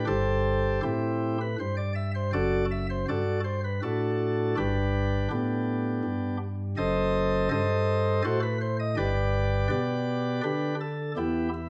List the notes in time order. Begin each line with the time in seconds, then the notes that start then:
0.07 G1 G2 G4 A4 C5
0.83 A2 C4 E4 G4
1.41 B4
1.60 G2 C5
1.77 D5
1.95 E5
2.15 C5
2.33 F#1 F#2 F#4 A4 D5
2.71 E5
2.90 C5
3.08 G2 F#4 A4 D5
3.44 C5
3.64 B4
3.83 A2 D4 F#4 A4
4.57 G1 G2 D4 G4 B4
5.31 A2 B3 D4 G4
6.04 G2
6.77 F#1 F#2 A4 C5 D#5
7.51 G2 A4 C5 D#5
8.24 A2 F#4 A4 C5
8.42 B4
8.61 C5
8.79 D#5
8.96 G1 G2 G4 B4 D5
9.70 B2 G4 B4 D5
10.43 D3 D4 G4 B4
10.80 A4
11.17 E2 E3 B3 E4 G4
11.54 E4